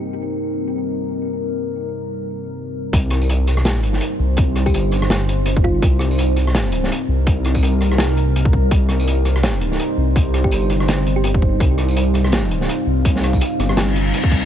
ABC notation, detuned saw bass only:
X:1
M:4/4
L:1/8
Q:"Swing 16ths" 1/4=166
K:Cm
V:1 name="Detuned saw bass" clef=bass
z8 | z8 | C,,6 z C,,- | C,,2 G,,,6 |
C,,6 z C,,- | C,,2 C,,4 C,,2 | C,,6 z C,,- | C,,2 G,,,6 |
C,,6 z C,,- | C,,2 z G,,,3 z C,, |]